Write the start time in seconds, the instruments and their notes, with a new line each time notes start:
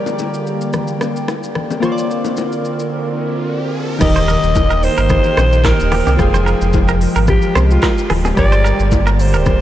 Already playing: analog synth pad D3 A#3 G5, synth keys G3 G4 A#4 D5
0.06 high bongo, low bongo, shaker
0.19 high bongo, low bongo, shaker
0.34 shaker
0.47 shaker
0.61 shaker
0.73 cross-stick, low conga, shaker
0.87 shaker
1.01 cross-stick, low bongo, shaker
1.16 shaker
1.28 cross-stick, high bongo, shaker
1.43 shaker
1.55 cross-stick, low conga
1.71 low bongo, shaker
1.80 synth keys A#3 F4 C5, analog synth pad C4 A#4, cross-stick, riser, low conga, shaker
1.85 synth keys C#5
1.92 synth keys D5
1.98 shaker
2.11 shaker
2.24 high bongo, low bongo, shaker
2.37 high bongo, low bongo, shaker
2.52 shaker
2.65 shaker
2.79 shaker
3.98 sub bass D#1, synth keys D#3 D#4 G4, analog synth pad D#3 A#3 G5, alto saxophone D#5, kick, cross-stick, crash, impact, low conga, shaker
4.03 synth keys A#4
4.16 clean electric guitar C5, shaker
4.28 clean electric guitar A#4, shaker
4.43 sub bass D#1, shaker
4.55 kick, high bongo, low bongo, shaker
4.70 clean electric guitar A#4, shaker
4.83 alto saxophone C5, open hi-hat, shaker
4.98 sub bass G1, clean electric guitar A#4, shaker
5.09 kick, cross-stick, low conga, shaker
5.24 shaker
5.37 sub bass A#1, clean electric guitar C5, cross-stick, low bongo, shaker
5.53 shaker
5.65 clean electric guitar A#4, alto saxophone A#4, kick, cross-stick, clap, high bongo, shaker
5.79 sub bass D#1, shaker
5.92 clean electric guitar G4, cross-stick, open hi-hat, high bongo, low conga
6.07 sub bass C2, clean electric guitar G4, low bongo, shaker
6.17 sub bass F1, synth keys F3 F4 G5, analog synth pad F3 G#3, alto saxophone G#4, kick, cross-stick, low conga, shaker
6.22 synth keys G#3
6.34 clean electric guitar C5, shaker
6.46 clean electric guitar A#4, shaker
6.61 sub bass F1, shaker
6.73 kick, high bongo, low bongo, shaker
6.89 clean electric guitar A#4, shaker
7.01 open hi-hat, shaker
7.16 sub bass G#1, clean electric guitar A#4, shaker
7.28 alto saxophone G4, kick, cross-stick, low conga, shaker
7.42 shaker
7.55 sub bass C2, clean electric guitar C5, cross-stick, low bongo, shaker
7.71 alto saxophone F4, shaker
7.83 clean electric guitar A#4, kick, cross-stick, clap, high bongo, shaker
7.98 shaker
8.10 sub bass D1, clean electric guitar G#4, cross-stick, open hi-hat, high bongo, low conga
8.25 clean electric guitar G#4, low bongo, shaker
8.35 sub bass G1, analog synth pad D3 A#3, synth keys G3 G4 A#4, alto saxophone D5, kick, cross-stick, low conga, shaker
8.40 synth keys D5
8.52 clean electric guitar C5, shaker
8.64 clean electric guitar A#4, shaker
8.80 sub bass G1, shaker
8.91 kick, high bongo, low bongo, shaker
9.07 clean electric guitar A#4, shaker
9.14 alto saxophone D5
9.19 alto saxophone C5, open hi-hat, shaker
9.34 sub bass D1, clean electric guitar A#4, shaker
9.46 kick, cross-stick, low conga, shaker